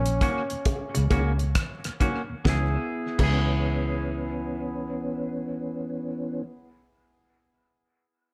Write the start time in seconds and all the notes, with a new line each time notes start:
Already playing: A#1 C#4
0.06 D#2 A#2, closed hi-hat
0.21 D#3 F#3 A#3 C#4 F#4, kick, closed hi-hat
0.50 D#2 A#2, closed hi-hat
0.65 kick, closed hi-hat, high bongo
0.95 C#2 D#2 A#2 C#3, muted clean electric guitar stroke, closed hi-hat
1.10 C#2 C#3 D#3 F#3 A#3 C#4 F#4, kick, closed hi-hat, high bongo
1.39 D#2 A#2, closed hi-hat
1.55 kick, cross-stick, closed hi-hat
1.84 D#2 A#2, cross-stick, closed hi-hat
2.00 D#3 F#3 A#3 C#4 F#4, kick, closed hi-hat, low bongo
2.29 D#2 A#2
2.45 C#2 E3 B3 C#4 E4, kick, snare, high bongo
2.49 G#4
3.18 C#2 E3 B3 C#4 E4, kick, crash, high bongo
3.23 G#4